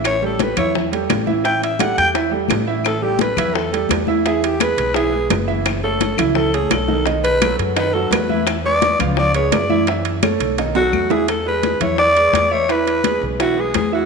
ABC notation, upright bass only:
X:1
M:4/4
L:1/8
Q:1/4=171
K:A
V:1 name="Upright bass" clef=bass
A,,,3 E,,3 A,,,2- | A,,,3 E,,3 A,,,2- | A,,,3 E,,3 E,,2- | E,,3 B,,,3 F,,,2- |
F,,,3 C,,3 B,,,2- | B,,,3 F,,3 E,,2- | E,,3 C,,3 F,,2- | F,,3 B,,,3 E,,2- |
E,,3 E,,3 E,,2- | E,,3 B,,,3 E,,2 |]